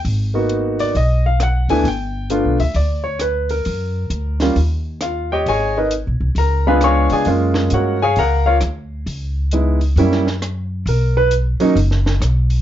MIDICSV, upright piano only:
0, 0, Header, 1, 2, 480
1, 0, Start_track
1, 0, Key_signature, 6, "major"
1, 0, Tempo, 450789
1, 49, Time_signature, 4, 2, 24, 8
1, 13435, End_track
2, 0, Start_track
2, 0, Title_t, "Upright piano"
2, 0, Program_c, 0, 0
2, 362, Note_on_c, 0, 58, 52
2, 370, Note_on_c, 0, 59, 48
2, 373, Note_on_c, 0, 63, 49
2, 373, Note_on_c, 0, 66, 56
2, 855, Note_on_c, 0, 74, 83
2, 977, Note_off_c, 0, 58, 0
2, 981, Note_off_c, 0, 59, 0
2, 983, Note_off_c, 0, 63, 0
2, 983, Note_off_c, 0, 66, 0
2, 1012, Note_off_c, 0, 74, 0
2, 1028, Note_on_c, 0, 75, 73
2, 1323, Note_off_c, 0, 75, 0
2, 1343, Note_on_c, 0, 77, 75
2, 1497, Note_off_c, 0, 77, 0
2, 1520, Note_on_c, 0, 78, 70
2, 1806, Note_on_c, 0, 57, 60
2, 1810, Note_off_c, 0, 78, 0
2, 1812, Note_on_c, 0, 59, 55
2, 1813, Note_on_c, 0, 80, 88
2, 1819, Note_on_c, 0, 62, 55
2, 1820, Note_on_c, 0, 64, 64
2, 1957, Note_off_c, 0, 57, 0
2, 1959, Note_off_c, 0, 59, 0
2, 1963, Note_off_c, 0, 62, 0
2, 1964, Note_off_c, 0, 64, 0
2, 1972, Note_off_c, 0, 80, 0
2, 2000, Note_on_c, 0, 79, 71
2, 2451, Note_on_c, 0, 59, 48
2, 2452, Note_on_c, 0, 57, 54
2, 2460, Note_on_c, 0, 62, 52
2, 2462, Note_on_c, 0, 65, 63
2, 2733, Note_off_c, 0, 59, 0
2, 2734, Note_off_c, 0, 57, 0
2, 2736, Note_off_c, 0, 79, 0
2, 2738, Note_off_c, 0, 62, 0
2, 2739, Note_off_c, 0, 65, 0
2, 2769, Note_on_c, 0, 76, 73
2, 2931, Note_off_c, 0, 76, 0
2, 2939, Note_on_c, 0, 74, 63
2, 3233, Note_on_c, 0, 73, 71
2, 3239, Note_off_c, 0, 74, 0
2, 3403, Note_off_c, 0, 73, 0
2, 3421, Note_on_c, 0, 71, 65
2, 3721, Note_off_c, 0, 71, 0
2, 3733, Note_on_c, 0, 70, 69
2, 4699, Note_on_c, 0, 55, 56
2, 4700, Note_on_c, 0, 58, 55
2, 4709, Note_on_c, 0, 65, 64
2, 4711, Note_on_c, 0, 61, 54
2, 4816, Note_off_c, 0, 70, 0
2, 4844, Note_off_c, 0, 55, 0
2, 4845, Note_off_c, 0, 58, 0
2, 4849, Note_off_c, 0, 65, 0
2, 4850, Note_off_c, 0, 61, 0
2, 5344, Note_on_c, 0, 77, 65
2, 5351, Note_on_c, 0, 65, 50
2, 5643, Note_off_c, 0, 77, 0
2, 5646, Note_off_c, 0, 65, 0
2, 5666, Note_on_c, 0, 79, 76
2, 5671, Note_on_c, 0, 67, 62
2, 5674, Note_on_c, 0, 73, 60
2, 5677, Note_on_c, 0, 75, 66
2, 5820, Note_off_c, 0, 79, 0
2, 5823, Note_off_c, 0, 67, 0
2, 5824, Note_off_c, 0, 73, 0
2, 5826, Note_off_c, 0, 75, 0
2, 5841, Note_on_c, 0, 80, 85
2, 5842, Note_on_c, 0, 75, 68
2, 5849, Note_on_c, 0, 68, 64
2, 5850, Note_on_c, 0, 73, 68
2, 6131, Note_off_c, 0, 80, 0
2, 6132, Note_off_c, 0, 75, 0
2, 6135, Note_off_c, 0, 68, 0
2, 6136, Note_off_c, 0, 73, 0
2, 6148, Note_on_c, 0, 75, 59
2, 6150, Note_on_c, 0, 71, 53
2, 6153, Note_on_c, 0, 70, 53
2, 6156, Note_on_c, 0, 63, 51
2, 6301, Note_off_c, 0, 75, 0
2, 6302, Note_off_c, 0, 71, 0
2, 6304, Note_off_c, 0, 70, 0
2, 6305, Note_off_c, 0, 63, 0
2, 6794, Note_on_c, 0, 82, 74
2, 6805, Note_on_c, 0, 70, 60
2, 7087, Note_off_c, 0, 82, 0
2, 7093, Note_off_c, 0, 70, 0
2, 7101, Note_on_c, 0, 56, 56
2, 7101, Note_on_c, 0, 59, 57
2, 7104, Note_on_c, 0, 83, 82
2, 7107, Note_on_c, 0, 62, 52
2, 7112, Note_on_c, 0, 65, 67
2, 7112, Note_on_c, 0, 77, 68
2, 7115, Note_on_c, 0, 71, 70
2, 7115, Note_on_c, 0, 80, 65
2, 7259, Note_off_c, 0, 83, 0
2, 7263, Note_off_c, 0, 77, 0
2, 7264, Note_off_c, 0, 80, 0
2, 7265, Note_off_c, 0, 71, 0
2, 7283, Note_on_c, 0, 85, 90
2, 7285, Note_on_c, 0, 73, 75
2, 7290, Note_on_c, 0, 77, 71
2, 7290, Note_on_c, 0, 80, 69
2, 7571, Note_off_c, 0, 80, 0
2, 7572, Note_off_c, 0, 85, 0
2, 7573, Note_off_c, 0, 73, 0
2, 7574, Note_off_c, 0, 77, 0
2, 7587, Note_on_c, 0, 80, 82
2, 7589, Note_on_c, 0, 68, 64
2, 7590, Note_on_c, 0, 77, 65
2, 7595, Note_on_c, 0, 74, 63
2, 7709, Note_off_c, 0, 56, 0
2, 7709, Note_off_c, 0, 59, 0
2, 7711, Note_off_c, 0, 62, 0
2, 7714, Note_off_c, 0, 65, 0
2, 7740, Note_off_c, 0, 80, 0
2, 7740, Note_on_c, 0, 56, 57
2, 7741, Note_off_c, 0, 68, 0
2, 7742, Note_off_c, 0, 77, 0
2, 7743, Note_on_c, 0, 58, 50
2, 7744, Note_off_c, 0, 74, 0
2, 7752, Note_on_c, 0, 61, 50
2, 7755, Note_on_c, 0, 65, 60
2, 8240, Note_on_c, 0, 78, 65
2, 8242, Note_on_c, 0, 66, 56
2, 8244, Note_on_c, 0, 70, 55
2, 8244, Note_on_c, 0, 73, 54
2, 8467, Note_off_c, 0, 56, 0
2, 8468, Note_off_c, 0, 58, 0
2, 8473, Note_off_c, 0, 61, 0
2, 8474, Note_off_c, 0, 65, 0
2, 8530, Note_off_c, 0, 78, 0
2, 8531, Note_off_c, 0, 66, 0
2, 8532, Note_off_c, 0, 70, 0
2, 8532, Note_off_c, 0, 73, 0
2, 8544, Note_on_c, 0, 80, 94
2, 8552, Note_on_c, 0, 77, 73
2, 8553, Note_on_c, 0, 68, 75
2, 8555, Note_on_c, 0, 73, 75
2, 8699, Note_off_c, 0, 80, 0
2, 8702, Note_off_c, 0, 77, 0
2, 8703, Note_off_c, 0, 68, 0
2, 8704, Note_off_c, 0, 73, 0
2, 8717, Note_on_c, 0, 82, 86
2, 8723, Note_on_c, 0, 70, 71
2, 8728, Note_on_c, 0, 77, 71
2, 8729, Note_on_c, 0, 78, 71
2, 8992, Note_off_c, 0, 77, 0
2, 9003, Note_off_c, 0, 70, 0
2, 9008, Note_off_c, 0, 82, 0
2, 9008, Note_on_c, 0, 77, 82
2, 9015, Note_off_c, 0, 78, 0
2, 9018, Note_on_c, 0, 73, 66
2, 9019, Note_on_c, 0, 70, 67
2, 9021, Note_on_c, 0, 65, 68
2, 9108, Note_off_c, 0, 77, 0
2, 9115, Note_off_c, 0, 73, 0
2, 9116, Note_off_c, 0, 70, 0
2, 9117, Note_off_c, 0, 65, 0
2, 10146, Note_on_c, 0, 56, 50
2, 10153, Note_on_c, 0, 59, 42
2, 10156, Note_on_c, 0, 63, 45
2, 10157, Note_on_c, 0, 64, 58
2, 10420, Note_off_c, 0, 56, 0
2, 10423, Note_off_c, 0, 59, 0
2, 10425, Note_off_c, 0, 63, 0
2, 10425, Note_off_c, 0, 64, 0
2, 10626, Note_on_c, 0, 58, 56
2, 10628, Note_on_c, 0, 55, 59
2, 10635, Note_on_c, 0, 61, 55
2, 10641, Note_on_c, 0, 64, 72
2, 10899, Note_off_c, 0, 58, 0
2, 10900, Note_off_c, 0, 55, 0
2, 10904, Note_off_c, 0, 61, 0
2, 10907, Note_off_c, 0, 64, 0
2, 11592, Note_on_c, 0, 70, 70
2, 11883, Note_off_c, 0, 70, 0
2, 11894, Note_on_c, 0, 71, 89
2, 12050, Note_off_c, 0, 71, 0
2, 12351, Note_on_c, 0, 54, 66
2, 12359, Note_on_c, 0, 58, 60
2, 12364, Note_on_c, 0, 61, 58
2, 12370, Note_on_c, 0, 63, 76
2, 12506, Note_off_c, 0, 54, 0
2, 12510, Note_off_c, 0, 58, 0
2, 12513, Note_off_c, 0, 61, 0
2, 12516, Note_off_c, 0, 63, 0
2, 13435, End_track
0, 0, End_of_file